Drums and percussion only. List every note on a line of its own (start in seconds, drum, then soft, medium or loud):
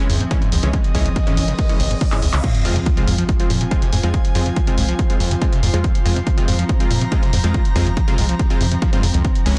0.10 open hi-hat loud
0.21 closed hi-hat soft
0.31 kick loud
0.31 closed hi-hat medium
0.42 closed hi-hat medium
0.52 open hi-hat loud
0.63 closed hi-hat medium
0.73 kick loud
0.73 closed hi-hat medium
0.84 closed hi-hat soft
0.95 kick medium
0.95 open hi-hat loud
1.06 closed hi-hat medium
1.16 kick loud
1.16 closed hi-hat medium
1.27 closed hi-hat medium
1.37 open hi-hat loud
1.48 closed hi-hat medium
1.59 kick loud
1.59 closed hi-hat medium
1.69 closed hi-hat medium
1.80 open hi-hat loud
1.91 closed hi-hat medium
2.01 kick loud
2.01 closed hi-hat medium
2.12 clap medium
2.12 closed hi-hat medium
2.22 open hi-hat loud
2.33 clap loud
2.33 closed hi-hat medium
2.44 kick loud
2.44 closed hi-hat medium
2.44 crash loud
2.55 closed hi-hat medium
2.65 open hi-hat loud
2.76 closed hi-hat medium
2.86 kick loud
2.86 closed hi-hat medium
2.97 closed hi-hat medium
3.08 open hi-hat loud
3.18 closed hi-hat medium
3.29 kick loud
3.29 closed hi-hat medium
3.40 closed hi-hat medium
3.50 open hi-hat loud
3.61 closed hi-hat medium
3.71 kick loud
3.71 closed hi-hat medium
3.82 closed hi-hat medium
3.93 open hi-hat loud
4.03 closed hi-hat medium
4.14 kick loud
4.14 closed hi-hat medium
4.25 closed hi-hat medium
4.35 open hi-hat loud
4.46 closed hi-hat medium
4.56 kick loud
4.56 closed hi-hat medium
4.67 closed hi-hat medium
4.78 open hi-hat loud
4.89 closed hi-hat medium
4.99 kick loud
4.99 closed hi-hat medium
5.10 closed hi-hat medium
5.20 open hi-hat loud
5.31 closed hi-hat medium
5.42 kick loud
5.42 closed hi-hat medium
5.53 closed hi-hat medium
5.63 open hi-hat loud
5.74 closed hi-hat medium
5.84 kick loud
5.84 closed hi-hat medium
5.95 closed hi-hat medium
6.06 open hi-hat loud
6.16 closed hi-hat medium
6.27 kick loud
6.27 closed hi-hat medium
6.38 closed hi-hat medium
6.48 open hi-hat loud
6.59 closed hi-hat medium
6.69 kick loud
6.69 closed hi-hat medium
6.80 closed hi-hat medium
6.91 open hi-hat loud
7.01 closed hi-hat medium
7.12 kick loud
7.12 closed hi-hat medium
7.23 closed hi-hat medium
7.33 open hi-hat loud
7.44 closed hi-hat medium
7.54 kick loud
7.54 closed hi-hat medium
7.65 closed hi-hat medium
7.76 kick medium
7.76 open hi-hat loud
7.86 closed hi-hat medium
7.97 kick loud
7.97 closed hi-hat medium
8.08 closed hi-hat medium
8.18 open hi-hat loud
8.29 closed hi-hat medium
8.39 kick loud
8.39 closed hi-hat medium
8.50 closed hi-hat medium
8.61 open hi-hat loud
8.72 closed hi-hat medium
8.82 kick loud
8.82 closed hi-hat medium
8.93 closed hi-hat medium
9.03 open hi-hat loud
9.14 closed hi-hat medium
9.25 kick loud
9.25 closed hi-hat medium
9.35 closed hi-hat medium
9.46 open hi-hat loud